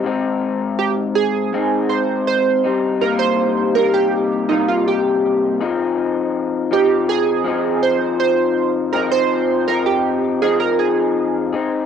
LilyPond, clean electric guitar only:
\new Staff \with { instrumentName = "Clean electric guitar" } { \time 4/4 \key f \minor \tempo 4 = 81 <aes, c' ees'>2 <aes, c' ees'>4. <g c' ees'>8 | <c g bes ees'>4 <c g bes ees'>4 <c g bes ees'>4. <f c' ees' aes'>8~ | <f c' ees' aes'>4 <f c' ees'>4 <f c' ees' aes'>2 | <f c' ees' aes'>4 <f c' ees'>4 <f c' ees' aes'>4. <c' ees' aes'>8 | }